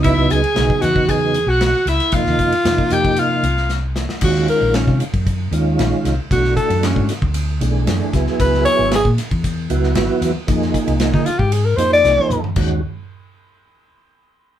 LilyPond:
<<
  \new Staff \with { instrumentName = "Overdriven electric guitar" } { \time 4/4 \key des \major \tempo 4 = 115 fes''8 aes''4 ges''8 aes''8. ges''8. fes''8 | f''4. g''8 f''4 r4 | r1 | r1 |
r1 | r1 | r1 | }
  \new Staff \with { instrumentName = "Alto saxophone" } { \time 4/4 \key des \major fes'8 aes'4 ges'8 aes'8. ges'8. fes'8 | f'4. g'8 f'4 r4 | ges'8 bes'8 des'8 r2 r8 | fis'8 a'8 des'8 r2 r8 |
ces''8 des''8 aes'8 r2 r8 | r4 r16 ees'16 f'16 g'16 aes'16 bes'16 c''16 d''4 r16 | r1 | }
  \new Staff \with { instrumentName = "Tonewheel organ" } { \time 4/4 \key des \major <des ges ces' ees'>8 r8 <des ges ces' ees'>4. r4. | <c f bes ees'>4 <c f bes ees'>4. r4. | <ees aes des' f'>4. r4 <ees aes des' f'>4 r8 | <fes a d' fis'>4. r4 <fes a d' aes'>4 <ges ces' fes' aes'>8~ |
<ges ces' fes' aes'>4 r4. <ges ces' fes' ges'>4 r8 | <f bes ees' aes'>4. r4 <f bes ees' aes'>4 r8 | <ees aes des' ges'>8 r2. r8 | }
  \new Staff \with { instrumentName = "Fingered electric bass" } { \clef bass \time 4/4 \key des \major des,16 des,16 des,16 r16 ces,16 r16 fes,4~ fes,16 ces,8 r16 des,16 r16 | f,16 ees,16 f,16 r16 f,16 r16 f,8 r8 c,4~ c,16 r16 | ees,8 r16 bes,,8 c16 r16 ges,8. ees,8 bes,,16 r16 c,16 r16 | b,,8 r16 fis,8 aes,16 r16 d,8. b,,8 fis,16 r16 des,16 r16 |
des,8 r16 aes,,8 bes,16 r16 fes,8. des,8 aes,,16 r16 fes,16 r16 | f,8 r16 c,8 d16 r16 aes,8. f,8 c,16 r16 f,16 r16 | ees,8 r2. r8 | }
  \new DrumStaff \with { instrumentName = "Drums" } \drummode { \time 4/4 <hhp bd cymr>8 <hhp cymr>16 cymr16 <hhp cymr sn>16 bd16 <hhp cymr sn>16 bd16 <hhp bd cymr>8 <hhp cymr>8 <hhp cymr sn>8 <hhp cymr sn>16 <cymr sn>16 | <hhp bd cymr>16 sn16 <hhp bd cymr>16 cymr16 <hhp cymr sn>16 bd16 <hhp cymr>16 <bd cymr>16 <hhp cymr>8 <hhp cymr>16 sn16 <hhp sn>8 <hhp sn>16 sn16 | <cymc bd>16 sn16 <hhp cymr>8 <hhp cymr sn>16 <bd sn>16 <hhp cymr>16 <bd cymr>16 <hhp bd cymr>8 <hhp cymr>8 <hhp cymr sn>8 <hhp cymr sn>8 | <hhp bd cymr>16 sn16 <hhp bd cymr>16 cymr16 <hhp cymr sn>16 bd16 <hhp cymr sn>16 bd16 <hhp cymr>8 <hhp cymr>8 <hhp cymr sn>8 <hhp bd cymr sn>16 sn16 |
<hhp bd cymr>16 sn16 <hhp cymr>8 <hhp cymr sn>16 bd16 <hhp cymr sn>16 <bd cymr>16 <hhp bd cymr>8 <hhp cymr>16 sn16 <hhp cymr sn>8 <hhp cymr sn>8 | <hhp bd cymr>16 sn16 <hhp bd cymr>16 cymr16 <hhp cymr sn>16 <bd sn>16 <hhp cymr>16 bd16 <hhp cymr>8 <hhp cymr>16 sn16 <hhp sn>16 tommh16 <hhp toml>16 tomfh16 | <cymc bd>4 r4 r4 r4 | }
>>